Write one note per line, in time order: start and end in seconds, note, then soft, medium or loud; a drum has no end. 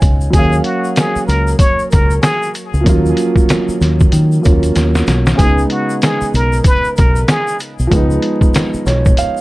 0.00 0.27 C#2 loud
0.00 0.28 F3 medium
0.00 0.29 G#3 medium
0.00 0.30 B3 medium
0.00 0.32 D#4 medium
0.00 0.35 C#5 medium
0.00 0.36 F5 medium
0.00 0.29 G#5 medium
0.00 kick loud
0.00 closed hi-hat medium
0.00 shaker medium
0.21 shaker medium
0.30 0.59 D#2 loud
0.30 2.81 F#3 medium
0.30 2.82 A#3 medium
0.30 0.62 G#4 loud
0.30 kick loud
0.30 closed hi-hat loud
0.30 shaker medium
0.36 2.83 C#4 medium
0.36 2.85 F5 medium
0.53 shaker medium
0.64 0.93 F#4 medium
0.64 closed hi-hat medium
0.84 shaker medium
0.96 1.26 G#4 medium
0.96 snare loud
0.96 snare medium
0.96 closed hi-hat loud
0.96 shaker medium
1.16 muted fingered electric bass stroke medium
1.16 shaker medium
1.27 1.54 C#2 medium
1.27 1.56 A#4 medium
1.27 closed hi-hat medium
1.27 shaker soft
1.48 shaker medium
1.59 1.88 C#5 loud
1.59 kick loud
1.59 closed hi-hat loud
1.59 shaker medium
1.79 shaker soft
1.90 2.18 C#2 medium
1.90 2.19 A#4 medium
1.90 kick loud
1.90 closed hi-hat medium
1.90 shaker medium
2.11 shaker medium
2.21 2.51 G#4 loud
2.21 snare loud
2.21 snare medium
2.21 closed hi-hat medium
2.21 shaker medium
2.43 shaker medium
2.55 closed hi-hat medium
2.55 shaker medium
2.74 2.84 C#2 medium
2.74 shaker medium
2.81 2.91 F3 medium
2.81 4.40 A#3 medium
2.86 3.12 D#2 loud
2.86 4.40 F#3 medium
2.86 4.41 C#4 medium
2.86 4.43 F4 medium
2.86 kick loud
2.86 closed hi-hat loud
2.86 shaker medium
3.06 shaker medium
3.17 closed hi-hat medium
3.17 shaker medium
3.36 kick medium
3.36 shaker medium
3.49 snare loud
3.49 snare medium
3.49 closed hi-hat medium
3.49 shaker medium
3.69 muted fingered electric bass stroke medium
3.69 shaker medium
3.81 4.06 D#2 medium
3.81 snare soft
3.81 closed hi-hat medium
3.81 shaker soft
4.00 kick loud
4.00 shaker medium
4.12 4.38 D#3 loud
4.12 closed hi-hat loud
4.12 shaker medium
4.32 shaker soft
4.42 5.38 F#3 medium
4.42 5.38 A#3 medium
4.42 5.39 C#4 medium
4.42 closed hi-hat medium
4.42 shaker medium
4.46 4.71 D#2 medium
4.46 5.40 F4 medium
4.46 kick loud
4.63 closed hi-hat soft
4.63 shaker medium
4.76 5.01 D#2 loud
4.76 snare medium
4.76 closed hi-hat medium
4.76 shaker medium
4.95 snare medium
4.95 shaker medium
5.07 5.33 B1 medium
5.07 snare loud
5.07 closed hi-hat medium
5.07 shaker medium
5.26 snare loud
5.26 shaker medium
5.35 5.64 C#2 loud
5.35 7.86 C#3 medium
5.35 7.87 G#3 medium
5.35 5.66 G#4 loud
5.35 kick loud
5.35 closed hi-hat loud
5.39 7.88 B3 medium
5.39 shaker medium
5.43 7.90 D#4 medium
5.58 shaker medium
5.70 6.00 F#4 medium
5.70 closed hi-hat medium
5.90 shaker medium
6.02 6.31 G#4 medium
6.02 snare loud
6.02 snare medium
6.02 closed hi-hat medium
6.02 shaker medium
6.21 muted fingered electric bass stroke soft
6.21 shaker medium
6.34 6.59 B1 medium
6.34 6.63 A#4 medium
6.34 closed hi-hat medium
6.34 shaker soft
6.53 shaker medium
6.64 6.94 B4 loud
6.64 kick loud
6.64 closed hi-hat loud
6.64 shaker medium
6.84 shaker soft
6.96 7.23 B1 loud
6.96 7.25 A#4 medium
6.96 kick loud
6.96 closed hi-hat medium
6.96 shaker medium
7.16 shaker medium
7.28 7.57 G#4 medium
7.28 snare loud
7.28 closed hi-hat medium
7.28 shaker medium
7.48 shaker medium
7.60 closed hi-hat medium
7.60 shaker medium
7.79 7.89 B1 medium
7.79 shaker medium
7.87 9.41 F3 medium
7.87 9.41 G#3 medium
7.91 8.17 C#2 loud
7.91 9.41 B3 medium
7.91 kick loud
7.91 closed hi-hat loud
7.91 shaker medium
7.96 9.41 D#4 medium
8.11 shaker medium
8.22 closed hi-hat medium
8.41 kick medium
8.41 shaker medium
8.54 snare loud
8.54 snare medium
8.54 closed hi-hat medium
8.54 shaker medium
8.74 muted fingered electric bass stroke medium
8.74 shaker medium
8.86 9.12 B1 loud
8.86 9.16 C#5 medium
8.86 snare soft
8.86 closed hi-hat medium
8.86 shaker soft
9.06 kick medium
9.06 shaker medium
9.17 9.41 F5 medium
9.17 closed hi-hat loud
9.17 shaker medium
9.37 shaker soft